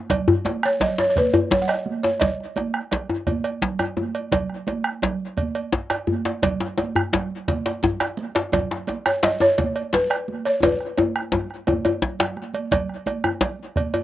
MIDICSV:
0, 0, Header, 1, 5, 480
1, 0, Start_track
1, 0, Key_signature, 5, "major"
1, 0, Tempo, 350263
1, 140, Time_signature, 12, 3, 24, 8
1, 19234, End_track
2, 0, Start_track
2, 0, Title_t, "Balafon"
2, 0, Program_c, 0, 12
2, 897, Note_on_c, 0, 73, 86
2, 1121, Note_on_c, 0, 75, 88
2, 1128, Note_off_c, 0, 73, 0
2, 1338, Note_off_c, 0, 75, 0
2, 1368, Note_on_c, 0, 73, 93
2, 1486, Note_off_c, 0, 73, 0
2, 1503, Note_on_c, 0, 73, 66
2, 1592, Note_off_c, 0, 73, 0
2, 1615, Note_on_c, 0, 71, 90
2, 2083, Note_on_c, 0, 73, 90
2, 2098, Note_off_c, 0, 71, 0
2, 2146, Note_off_c, 0, 73, 0
2, 2215, Note_on_c, 0, 78, 74
2, 2300, Note_on_c, 0, 75, 82
2, 2310, Note_off_c, 0, 78, 0
2, 2787, Note_on_c, 0, 73, 82
2, 2802, Note_off_c, 0, 75, 0
2, 2897, Note_off_c, 0, 73, 0
2, 3009, Note_on_c, 0, 75, 83
2, 4412, Note_off_c, 0, 75, 0
2, 12425, Note_on_c, 0, 73, 76
2, 12662, Note_off_c, 0, 73, 0
2, 12664, Note_on_c, 0, 75, 99
2, 12900, Note_on_c, 0, 73, 102
2, 12901, Note_off_c, 0, 75, 0
2, 13339, Note_off_c, 0, 73, 0
2, 13622, Note_on_c, 0, 71, 92
2, 14339, Note_on_c, 0, 73, 86
2, 14352, Note_off_c, 0, 71, 0
2, 14577, Note_off_c, 0, 73, 0
2, 14579, Note_on_c, 0, 71, 84
2, 16905, Note_off_c, 0, 71, 0
2, 19234, End_track
3, 0, Start_track
3, 0, Title_t, "Bombo"
3, 132, Note_on_c, 9, 37, 28
3, 132, Note_on_c, 9, 43, 86
3, 269, Note_off_c, 9, 37, 0
3, 269, Note_off_c, 9, 43, 0
3, 385, Note_on_c, 9, 37, 31
3, 522, Note_off_c, 9, 37, 0
3, 867, Note_on_c, 9, 37, 81
3, 1004, Note_off_c, 9, 37, 0
3, 1592, Note_on_c, 9, 43, 101
3, 1729, Note_off_c, 9, 43, 0
3, 2318, Note_on_c, 9, 37, 65
3, 2455, Note_off_c, 9, 37, 0
3, 3028, Note_on_c, 9, 43, 81
3, 3165, Note_off_c, 9, 43, 0
3, 3754, Note_on_c, 9, 37, 70
3, 3891, Note_off_c, 9, 37, 0
3, 3991, Note_on_c, 9, 37, 30
3, 4128, Note_off_c, 9, 37, 0
3, 4241, Note_on_c, 9, 37, 26
3, 4378, Note_off_c, 9, 37, 0
3, 4477, Note_on_c, 9, 43, 91
3, 4614, Note_off_c, 9, 43, 0
3, 4723, Note_on_c, 9, 37, 28
3, 4860, Note_off_c, 9, 37, 0
3, 5199, Note_on_c, 9, 37, 66
3, 5336, Note_off_c, 9, 37, 0
3, 5919, Note_on_c, 9, 37, 26
3, 5919, Note_on_c, 9, 43, 83
3, 6056, Note_off_c, 9, 37, 0
3, 6056, Note_off_c, 9, 43, 0
3, 6160, Note_on_c, 9, 37, 26
3, 6298, Note_off_c, 9, 37, 0
3, 6637, Note_on_c, 9, 37, 73
3, 6774, Note_off_c, 9, 37, 0
3, 7366, Note_on_c, 9, 43, 94
3, 7503, Note_off_c, 9, 43, 0
3, 8085, Note_on_c, 9, 37, 72
3, 8222, Note_off_c, 9, 37, 0
3, 8811, Note_on_c, 9, 37, 29
3, 8811, Note_on_c, 9, 43, 90
3, 8948, Note_off_c, 9, 37, 0
3, 8948, Note_off_c, 9, 43, 0
3, 9056, Note_on_c, 9, 37, 29
3, 9193, Note_off_c, 9, 37, 0
3, 9541, Note_on_c, 9, 37, 82
3, 9678, Note_off_c, 9, 37, 0
3, 10249, Note_on_c, 9, 43, 102
3, 10386, Note_off_c, 9, 43, 0
3, 10967, Note_on_c, 9, 37, 82
3, 11104, Note_off_c, 9, 37, 0
3, 11694, Note_on_c, 9, 37, 33
3, 11694, Note_on_c, 9, 43, 92
3, 11831, Note_off_c, 9, 37, 0
3, 11831, Note_off_c, 9, 43, 0
3, 11936, Note_on_c, 9, 37, 32
3, 12073, Note_off_c, 9, 37, 0
3, 12412, Note_on_c, 9, 37, 86
3, 12549, Note_off_c, 9, 37, 0
3, 13135, Note_on_c, 9, 43, 98
3, 13272, Note_off_c, 9, 43, 0
3, 13852, Note_on_c, 9, 37, 77
3, 13989, Note_off_c, 9, 37, 0
3, 14568, Note_on_c, 9, 37, 26
3, 14568, Note_on_c, 9, 43, 88
3, 14705, Note_off_c, 9, 37, 0
3, 14705, Note_off_c, 9, 43, 0
3, 14807, Note_on_c, 9, 37, 30
3, 14944, Note_off_c, 9, 37, 0
3, 15289, Note_on_c, 9, 37, 73
3, 15426, Note_off_c, 9, 37, 0
3, 15768, Note_on_c, 9, 37, 31
3, 15905, Note_off_c, 9, 37, 0
3, 16007, Note_on_c, 9, 37, 30
3, 16007, Note_on_c, 9, 43, 89
3, 16144, Note_off_c, 9, 37, 0
3, 16144, Note_off_c, 9, 43, 0
3, 16719, Note_on_c, 9, 37, 70
3, 16856, Note_off_c, 9, 37, 0
3, 16952, Note_on_c, 9, 37, 32
3, 17089, Note_off_c, 9, 37, 0
3, 17426, Note_on_c, 9, 37, 31
3, 17426, Note_on_c, 9, 43, 95
3, 17563, Note_off_c, 9, 37, 0
3, 17563, Note_off_c, 9, 43, 0
3, 17670, Note_on_c, 9, 37, 31
3, 17807, Note_off_c, 9, 37, 0
3, 18145, Note_on_c, 9, 37, 81
3, 18282, Note_off_c, 9, 37, 0
3, 18854, Note_on_c, 9, 43, 108
3, 18991, Note_off_c, 9, 43, 0
3, 19234, End_track
4, 0, Start_track
4, 0, Title_t, "Djembe"
4, 136, Note_on_c, 9, 62, 70
4, 136, Note_on_c, 9, 64, 64
4, 273, Note_off_c, 9, 62, 0
4, 273, Note_off_c, 9, 64, 0
4, 380, Note_on_c, 9, 64, 107
4, 517, Note_off_c, 9, 64, 0
4, 618, Note_on_c, 9, 63, 64
4, 625, Note_on_c, 9, 62, 80
4, 755, Note_off_c, 9, 63, 0
4, 762, Note_off_c, 9, 62, 0
4, 1109, Note_on_c, 9, 62, 76
4, 1109, Note_on_c, 9, 64, 69
4, 1246, Note_off_c, 9, 62, 0
4, 1246, Note_off_c, 9, 64, 0
4, 1348, Note_on_c, 9, 62, 83
4, 1485, Note_off_c, 9, 62, 0
4, 1832, Note_on_c, 9, 64, 98
4, 1969, Note_off_c, 9, 64, 0
4, 2072, Note_on_c, 9, 62, 77
4, 2080, Note_off_c, 9, 62, 0
4, 2080, Note_on_c, 9, 62, 73
4, 2080, Note_on_c, 9, 63, 77
4, 2080, Note_on_c, 9, 64, 73
4, 2217, Note_off_c, 9, 62, 0
4, 2217, Note_off_c, 9, 63, 0
4, 2217, Note_off_c, 9, 64, 0
4, 2800, Note_on_c, 9, 62, 76
4, 2937, Note_off_c, 9, 62, 0
4, 3037, Note_on_c, 9, 62, 71
4, 3037, Note_on_c, 9, 64, 67
4, 3174, Note_off_c, 9, 62, 0
4, 3174, Note_off_c, 9, 64, 0
4, 3293, Note_on_c, 9, 62, 23
4, 3430, Note_off_c, 9, 62, 0
4, 3529, Note_on_c, 9, 63, 69
4, 3666, Note_off_c, 9, 63, 0
4, 3771, Note_on_c, 9, 62, 23
4, 3908, Note_off_c, 9, 62, 0
4, 4009, Note_on_c, 9, 62, 80
4, 4009, Note_on_c, 9, 64, 69
4, 4146, Note_off_c, 9, 62, 0
4, 4146, Note_off_c, 9, 64, 0
4, 4242, Note_on_c, 9, 63, 79
4, 4379, Note_off_c, 9, 63, 0
4, 4481, Note_on_c, 9, 63, 66
4, 4619, Note_off_c, 9, 63, 0
4, 4965, Note_on_c, 9, 62, 81
4, 4965, Note_on_c, 9, 64, 75
4, 5102, Note_off_c, 9, 62, 0
4, 5102, Note_off_c, 9, 64, 0
4, 5201, Note_on_c, 9, 63, 72
4, 5338, Note_off_c, 9, 63, 0
4, 5438, Note_on_c, 9, 63, 70
4, 5448, Note_on_c, 9, 62, 24
4, 5575, Note_off_c, 9, 63, 0
4, 5585, Note_off_c, 9, 62, 0
4, 5925, Note_on_c, 9, 62, 80
4, 5925, Note_on_c, 9, 64, 73
4, 6062, Note_off_c, 9, 62, 0
4, 6062, Note_off_c, 9, 64, 0
4, 6409, Note_on_c, 9, 63, 73
4, 6547, Note_off_c, 9, 63, 0
4, 6895, Note_on_c, 9, 62, 79
4, 6895, Note_on_c, 9, 64, 76
4, 7032, Note_off_c, 9, 62, 0
4, 7032, Note_off_c, 9, 64, 0
4, 7616, Note_on_c, 9, 62, 22
4, 7753, Note_off_c, 9, 62, 0
4, 7845, Note_on_c, 9, 62, 78
4, 7849, Note_off_c, 9, 62, 0
4, 7849, Note_on_c, 9, 62, 67
4, 7849, Note_on_c, 9, 63, 74
4, 7849, Note_on_c, 9, 64, 78
4, 7986, Note_off_c, 9, 62, 0
4, 7986, Note_off_c, 9, 63, 0
4, 7986, Note_off_c, 9, 64, 0
4, 8088, Note_on_c, 9, 62, 74
4, 8225, Note_off_c, 9, 62, 0
4, 8323, Note_on_c, 9, 64, 69
4, 8337, Note_on_c, 9, 62, 22
4, 8460, Note_off_c, 9, 64, 0
4, 8474, Note_off_c, 9, 62, 0
4, 8569, Note_on_c, 9, 62, 83
4, 8706, Note_off_c, 9, 62, 0
4, 8813, Note_on_c, 9, 62, 72
4, 8813, Note_on_c, 9, 64, 70
4, 8950, Note_off_c, 9, 62, 0
4, 8950, Note_off_c, 9, 64, 0
4, 9051, Note_on_c, 9, 62, 77
4, 9188, Note_off_c, 9, 62, 0
4, 9286, Note_on_c, 9, 62, 69
4, 9293, Note_on_c, 9, 63, 67
4, 9423, Note_off_c, 9, 62, 0
4, 9430, Note_off_c, 9, 63, 0
4, 9532, Note_on_c, 9, 64, 70
4, 9669, Note_off_c, 9, 64, 0
4, 9772, Note_on_c, 9, 62, 85
4, 9779, Note_off_c, 9, 62, 0
4, 9779, Note_on_c, 9, 62, 75
4, 9779, Note_on_c, 9, 64, 73
4, 9916, Note_off_c, 9, 62, 0
4, 9916, Note_off_c, 9, 64, 0
4, 10253, Note_on_c, 9, 62, 70
4, 10390, Note_off_c, 9, 62, 0
4, 10495, Note_on_c, 9, 62, 72
4, 10632, Note_off_c, 9, 62, 0
4, 10738, Note_on_c, 9, 62, 67
4, 10738, Note_on_c, 9, 63, 75
4, 10738, Note_on_c, 9, 64, 70
4, 10742, Note_off_c, 9, 64, 0
4, 10742, Note_on_c, 9, 64, 75
4, 10875, Note_off_c, 9, 62, 0
4, 10875, Note_off_c, 9, 63, 0
4, 10879, Note_off_c, 9, 64, 0
4, 10976, Note_on_c, 9, 62, 80
4, 11113, Note_off_c, 9, 62, 0
4, 11221, Note_on_c, 9, 62, 23
4, 11358, Note_off_c, 9, 62, 0
4, 11452, Note_on_c, 9, 62, 104
4, 11589, Note_off_c, 9, 62, 0
4, 11693, Note_on_c, 9, 63, 74
4, 11694, Note_on_c, 9, 62, 63
4, 11694, Note_on_c, 9, 64, 74
4, 11830, Note_off_c, 9, 63, 0
4, 11831, Note_off_c, 9, 62, 0
4, 11831, Note_off_c, 9, 64, 0
4, 11940, Note_on_c, 9, 62, 80
4, 12077, Note_off_c, 9, 62, 0
4, 12179, Note_on_c, 9, 63, 68
4, 12316, Note_off_c, 9, 63, 0
4, 12415, Note_on_c, 9, 62, 66
4, 12552, Note_off_c, 9, 62, 0
4, 12648, Note_on_c, 9, 62, 114
4, 12661, Note_off_c, 9, 62, 0
4, 12661, Note_on_c, 9, 62, 71
4, 12798, Note_off_c, 9, 62, 0
4, 12888, Note_on_c, 9, 63, 86
4, 13025, Note_off_c, 9, 63, 0
4, 13130, Note_on_c, 9, 62, 71
4, 13267, Note_off_c, 9, 62, 0
4, 13374, Note_on_c, 9, 62, 21
4, 13511, Note_off_c, 9, 62, 0
4, 13606, Note_on_c, 9, 62, 80
4, 13621, Note_off_c, 9, 62, 0
4, 13621, Note_on_c, 9, 62, 68
4, 13621, Note_on_c, 9, 63, 71
4, 13758, Note_off_c, 9, 62, 0
4, 13758, Note_off_c, 9, 63, 0
4, 14090, Note_on_c, 9, 62, 23
4, 14227, Note_off_c, 9, 62, 0
4, 14569, Note_on_c, 9, 63, 107
4, 14570, Note_on_c, 9, 62, 68
4, 14570, Note_on_c, 9, 64, 63
4, 14706, Note_off_c, 9, 63, 0
4, 14707, Note_off_c, 9, 62, 0
4, 14707, Note_off_c, 9, 64, 0
4, 14806, Note_on_c, 9, 62, 22
4, 14943, Note_off_c, 9, 62, 0
4, 15041, Note_on_c, 9, 63, 72
4, 15052, Note_off_c, 9, 63, 0
4, 15052, Note_on_c, 9, 63, 102
4, 15189, Note_off_c, 9, 63, 0
4, 15512, Note_on_c, 9, 62, 68
4, 15512, Note_on_c, 9, 64, 77
4, 15528, Note_on_c, 9, 63, 100
4, 15649, Note_off_c, 9, 62, 0
4, 15649, Note_off_c, 9, 64, 0
4, 15665, Note_off_c, 9, 63, 0
4, 15758, Note_on_c, 9, 62, 19
4, 15895, Note_off_c, 9, 62, 0
4, 15999, Note_on_c, 9, 62, 23
4, 16004, Note_on_c, 9, 63, 88
4, 16136, Note_off_c, 9, 62, 0
4, 16142, Note_off_c, 9, 63, 0
4, 16243, Note_on_c, 9, 63, 95
4, 16380, Note_off_c, 9, 63, 0
4, 16475, Note_on_c, 9, 62, 69
4, 16475, Note_on_c, 9, 63, 72
4, 16475, Note_on_c, 9, 64, 72
4, 16612, Note_off_c, 9, 62, 0
4, 16612, Note_off_c, 9, 63, 0
4, 16612, Note_off_c, 9, 64, 0
4, 16720, Note_on_c, 9, 62, 104
4, 16857, Note_off_c, 9, 62, 0
4, 16947, Note_on_c, 9, 62, 21
4, 17084, Note_off_c, 9, 62, 0
4, 17431, Note_on_c, 9, 62, 79
4, 17431, Note_on_c, 9, 64, 83
4, 17568, Note_off_c, 9, 62, 0
4, 17568, Note_off_c, 9, 64, 0
4, 17905, Note_on_c, 9, 63, 72
4, 18042, Note_off_c, 9, 63, 0
4, 18146, Note_on_c, 9, 63, 81
4, 18283, Note_off_c, 9, 63, 0
4, 18375, Note_on_c, 9, 62, 88
4, 18375, Note_on_c, 9, 64, 82
4, 18512, Note_off_c, 9, 62, 0
4, 18512, Note_off_c, 9, 64, 0
4, 19098, Note_on_c, 9, 62, 22
4, 19101, Note_on_c, 9, 63, 77
4, 19234, Note_off_c, 9, 62, 0
4, 19234, Note_off_c, 9, 63, 0
4, 19234, End_track
5, 0, Start_track
5, 0, Title_t, "Drums"
5, 136, Note_on_c, 9, 64, 80
5, 145, Note_on_c, 9, 56, 68
5, 273, Note_off_c, 9, 64, 0
5, 282, Note_off_c, 9, 56, 0
5, 613, Note_on_c, 9, 63, 80
5, 631, Note_on_c, 9, 56, 46
5, 750, Note_off_c, 9, 63, 0
5, 768, Note_off_c, 9, 56, 0
5, 1099, Note_on_c, 9, 63, 26
5, 1099, Note_on_c, 9, 64, 79
5, 1107, Note_on_c, 9, 56, 52
5, 1236, Note_off_c, 9, 63, 0
5, 1236, Note_off_c, 9, 64, 0
5, 1244, Note_off_c, 9, 56, 0
5, 1585, Note_on_c, 9, 63, 67
5, 1600, Note_on_c, 9, 56, 52
5, 1722, Note_off_c, 9, 63, 0
5, 1737, Note_off_c, 9, 56, 0
5, 1830, Note_on_c, 9, 56, 56
5, 1967, Note_off_c, 9, 56, 0
5, 2065, Note_on_c, 9, 64, 74
5, 2202, Note_off_c, 9, 64, 0
5, 2319, Note_on_c, 9, 56, 51
5, 2456, Note_off_c, 9, 56, 0
5, 2545, Note_on_c, 9, 63, 74
5, 2682, Note_off_c, 9, 63, 0
5, 3028, Note_on_c, 9, 63, 24
5, 3028, Note_on_c, 9, 64, 70
5, 3029, Note_on_c, 9, 56, 64
5, 3165, Note_off_c, 9, 63, 0
5, 3165, Note_off_c, 9, 64, 0
5, 3166, Note_off_c, 9, 56, 0
5, 3506, Note_on_c, 9, 63, 77
5, 3515, Note_on_c, 9, 56, 48
5, 3643, Note_off_c, 9, 63, 0
5, 3652, Note_off_c, 9, 56, 0
5, 3754, Note_on_c, 9, 63, 25
5, 3891, Note_off_c, 9, 63, 0
5, 3995, Note_on_c, 9, 64, 75
5, 3999, Note_on_c, 9, 56, 52
5, 4132, Note_off_c, 9, 64, 0
5, 4136, Note_off_c, 9, 56, 0
5, 4478, Note_on_c, 9, 56, 49
5, 4479, Note_on_c, 9, 63, 72
5, 4616, Note_off_c, 9, 56, 0
5, 4616, Note_off_c, 9, 63, 0
5, 4717, Note_on_c, 9, 56, 56
5, 4854, Note_off_c, 9, 56, 0
5, 4956, Note_on_c, 9, 63, 21
5, 4956, Note_on_c, 9, 64, 68
5, 5093, Note_off_c, 9, 63, 0
5, 5093, Note_off_c, 9, 64, 0
5, 5194, Note_on_c, 9, 63, 21
5, 5196, Note_on_c, 9, 56, 47
5, 5332, Note_off_c, 9, 63, 0
5, 5333, Note_off_c, 9, 56, 0
5, 5435, Note_on_c, 9, 63, 73
5, 5572, Note_off_c, 9, 63, 0
5, 5684, Note_on_c, 9, 56, 50
5, 5821, Note_off_c, 9, 56, 0
5, 5914, Note_on_c, 9, 64, 81
5, 5927, Note_on_c, 9, 56, 64
5, 6051, Note_off_c, 9, 64, 0
5, 6064, Note_off_c, 9, 56, 0
5, 6156, Note_on_c, 9, 63, 27
5, 6293, Note_off_c, 9, 63, 0
5, 6396, Note_on_c, 9, 63, 77
5, 6407, Note_on_c, 9, 56, 42
5, 6533, Note_off_c, 9, 63, 0
5, 6544, Note_off_c, 9, 56, 0
5, 6883, Note_on_c, 9, 63, 27
5, 6883, Note_on_c, 9, 64, 79
5, 6889, Note_on_c, 9, 56, 51
5, 7020, Note_off_c, 9, 63, 0
5, 7020, Note_off_c, 9, 64, 0
5, 7026, Note_off_c, 9, 56, 0
5, 7123, Note_on_c, 9, 63, 25
5, 7260, Note_off_c, 9, 63, 0
5, 7356, Note_on_c, 9, 63, 65
5, 7366, Note_on_c, 9, 56, 49
5, 7493, Note_off_c, 9, 63, 0
5, 7503, Note_off_c, 9, 56, 0
5, 7607, Note_on_c, 9, 56, 53
5, 7744, Note_off_c, 9, 56, 0
5, 7843, Note_on_c, 9, 63, 22
5, 7980, Note_off_c, 9, 63, 0
5, 8096, Note_on_c, 9, 56, 55
5, 8233, Note_off_c, 9, 56, 0
5, 8320, Note_on_c, 9, 63, 74
5, 8457, Note_off_c, 9, 63, 0
5, 8576, Note_on_c, 9, 56, 50
5, 8713, Note_off_c, 9, 56, 0
5, 8804, Note_on_c, 9, 64, 81
5, 8811, Note_on_c, 9, 56, 69
5, 8941, Note_off_c, 9, 64, 0
5, 8948, Note_off_c, 9, 56, 0
5, 9044, Note_on_c, 9, 63, 24
5, 9181, Note_off_c, 9, 63, 0
5, 9286, Note_on_c, 9, 63, 78
5, 9294, Note_on_c, 9, 56, 47
5, 9423, Note_off_c, 9, 63, 0
5, 9431, Note_off_c, 9, 56, 0
5, 9766, Note_on_c, 9, 63, 25
5, 9766, Note_on_c, 9, 64, 74
5, 9777, Note_on_c, 9, 56, 50
5, 9903, Note_off_c, 9, 63, 0
5, 9903, Note_off_c, 9, 64, 0
5, 9914, Note_off_c, 9, 56, 0
5, 10008, Note_on_c, 9, 63, 26
5, 10145, Note_off_c, 9, 63, 0
5, 10249, Note_on_c, 9, 63, 69
5, 10252, Note_on_c, 9, 56, 52
5, 10386, Note_off_c, 9, 63, 0
5, 10389, Note_off_c, 9, 56, 0
5, 10494, Note_on_c, 9, 56, 53
5, 10631, Note_off_c, 9, 56, 0
5, 10727, Note_on_c, 9, 63, 24
5, 10727, Note_on_c, 9, 64, 75
5, 10864, Note_off_c, 9, 63, 0
5, 10864, Note_off_c, 9, 64, 0
5, 10972, Note_on_c, 9, 56, 48
5, 11109, Note_off_c, 9, 56, 0
5, 11199, Note_on_c, 9, 63, 80
5, 11336, Note_off_c, 9, 63, 0
5, 11443, Note_on_c, 9, 56, 50
5, 11580, Note_off_c, 9, 56, 0
5, 11680, Note_on_c, 9, 64, 72
5, 11692, Note_on_c, 9, 56, 67
5, 11817, Note_off_c, 9, 64, 0
5, 11829, Note_off_c, 9, 56, 0
5, 12160, Note_on_c, 9, 63, 76
5, 12167, Note_on_c, 9, 56, 42
5, 12297, Note_off_c, 9, 63, 0
5, 12305, Note_off_c, 9, 56, 0
5, 12645, Note_on_c, 9, 63, 23
5, 12645, Note_on_c, 9, 64, 80
5, 12657, Note_on_c, 9, 56, 51
5, 12782, Note_off_c, 9, 63, 0
5, 12782, Note_off_c, 9, 64, 0
5, 12794, Note_off_c, 9, 56, 0
5, 13128, Note_on_c, 9, 56, 50
5, 13131, Note_on_c, 9, 63, 62
5, 13265, Note_off_c, 9, 56, 0
5, 13268, Note_off_c, 9, 63, 0
5, 13370, Note_on_c, 9, 56, 49
5, 13507, Note_off_c, 9, 56, 0
5, 13606, Note_on_c, 9, 64, 70
5, 13743, Note_off_c, 9, 64, 0
5, 13844, Note_on_c, 9, 56, 53
5, 13981, Note_off_c, 9, 56, 0
5, 14088, Note_on_c, 9, 63, 67
5, 14225, Note_off_c, 9, 63, 0
5, 14326, Note_on_c, 9, 56, 49
5, 14463, Note_off_c, 9, 56, 0
5, 14560, Note_on_c, 9, 64, 69
5, 14570, Note_on_c, 9, 56, 68
5, 14697, Note_off_c, 9, 64, 0
5, 14707, Note_off_c, 9, 56, 0
5, 14808, Note_on_c, 9, 63, 21
5, 14945, Note_off_c, 9, 63, 0
5, 15040, Note_on_c, 9, 56, 46
5, 15040, Note_on_c, 9, 63, 64
5, 15177, Note_off_c, 9, 56, 0
5, 15177, Note_off_c, 9, 63, 0
5, 15519, Note_on_c, 9, 64, 74
5, 15656, Note_off_c, 9, 64, 0
5, 15992, Note_on_c, 9, 63, 67
5, 15994, Note_on_c, 9, 56, 53
5, 16129, Note_off_c, 9, 63, 0
5, 16131, Note_off_c, 9, 56, 0
5, 16236, Note_on_c, 9, 56, 58
5, 16373, Note_off_c, 9, 56, 0
5, 16467, Note_on_c, 9, 64, 40
5, 16604, Note_off_c, 9, 64, 0
5, 16706, Note_on_c, 9, 64, 44
5, 16717, Note_on_c, 9, 56, 53
5, 16843, Note_off_c, 9, 64, 0
5, 16854, Note_off_c, 9, 56, 0
5, 16945, Note_on_c, 9, 63, 52
5, 17082, Note_off_c, 9, 63, 0
5, 17180, Note_on_c, 9, 63, 61
5, 17192, Note_on_c, 9, 56, 55
5, 17317, Note_off_c, 9, 63, 0
5, 17329, Note_off_c, 9, 56, 0
5, 17421, Note_on_c, 9, 64, 65
5, 17433, Note_on_c, 9, 56, 80
5, 17558, Note_off_c, 9, 64, 0
5, 17570, Note_off_c, 9, 56, 0
5, 17660, Note_on_c, 9, 63, 22
5, 17797, Note_off_c, 9, 63, 0
5, 17898, Note_on_c, 9, 63, 66
5, 17910, Note_on_c, 9, 56, 55
5, 18035, Note_off_c, 9, 63, 0
5, 18047, Note_off_c, 9, 56, 0
5, 18375, Note_on_c, 9, 63, 24
5, 18375, Note_on_c, 9, 64, 68
5, 18384, Note_on_c, 9, 56, 57
5, 18512, Note_off_c, 9, 63, 0
5, 18512, Note_off_c, 9, 64, 0
5, 18521, Note_off_c, 9, 56, 0
5, 18624, Note_on_c, 9, 63, 22
5, 18761, Note_off_c, 9, 63, 0
5, 18856, Note_on_c, 9, 63, 62
5, 18870, Note_on_c, 9, 56, 59
5, 18993, Note_off_c, 9, 63, 0
5, 19007, Note_off_c, 9, 56, 0
5, 19100, Note_on_c, 9, 56, 63
5, 19234, Note_off_c, 9, 56, 0
5, 19234, End_track
0, 0, End_of_file